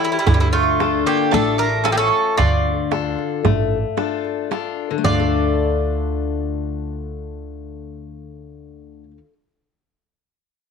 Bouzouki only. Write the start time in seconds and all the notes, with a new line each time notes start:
0.05 E4
0.12 E4
0.19 E4
0.27 E4
0.34 E4
0.40 E4
0.53 F4
1.07 G4
1.34 A4
1.59 A#4
1.85 A4
1.92 G4
1.98 A4
2.37 D5
5.05 D5